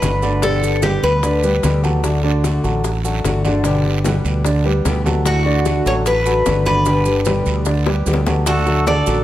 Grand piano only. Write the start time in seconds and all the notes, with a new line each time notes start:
Already playing: F#3 F#4 A4
0.22 D3 D4 D5
0.43 D3 D4 D5
0.83 G3 G4 B4
1.23 D3 D4 D5
1.43 G3 G4 B4
1.83 F#3 F#4 A4
2.23 D3 D4 D5
2.63 F#3 F#4 A4
3.04 F#3 F#4 A4
3.45 D3 D4 D5
3.65 D3 D4 D5
4.05 G3 G4 B4
4.44 D3 D4 D5
4.65 G3 G4 B4
5.05 F#3 F#4 A4
5.45 D3 D4 D5
5.86 F#3 F#4 A4
6.25 F#3 F#4 A4
6.66 D3 D4 D5
6.86 D3 D4 D5
7.26 G3 G4 B4
7.66 D3 D4 D5
7.86 G3 G4 B4
8.26 F#3 F#4 A4
8.66 F#3 F#4 A4
8.87 D3 D4 D5
9.07 F#3 F#4 A4